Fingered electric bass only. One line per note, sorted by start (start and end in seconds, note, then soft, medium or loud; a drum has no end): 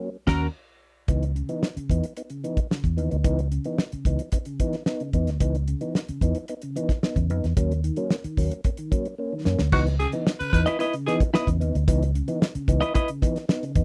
0.28 0.46 D#2 loud
1.09 1.41 C#2 medium
1.77 muted fingered electric bass stroke soft
1.90 2.00 E2 medium
2.84 2.98 E2 medium
2.98 3.09 D#2 medium
3.12 3.23 D2 medium
3.25 3.57 C#2 loud
3.93 muted fingered electric bass stroke soft
4.06 4.16 C#2 medium
5.14 5.28 E2 medium
5.28 5.38 D2 medium
5.41 5.73 C#2 loud
6.09 muted fingered electric bass stroke soft
6.21 6.32 E2 medium
7.16 7.30 E2 medium
7.30 7.41 F2 medium
7.44 7.55 E2 medium
7.57 7.89 D#2 medium
8.24 muted fingered electric bass stroke soft
8.38 8.48 D#2 medium
9.46 9.57 F#2 medium
9.60 9.70 D2 medium
9.72 10.05 C#2 medium
10.41 muted fingered electric bass stroke soft
10.53 10.64 E2 medium
11.48 11.62 E2 medium
11.62 11.72 D#2 medium
11.75 11.85 D2 medium
11.88 12.20 C#2 loud
12.55 muted fingered electric bass stroke soft
12.68 12.79 C#2 medium
13.76 13.84 E2 loud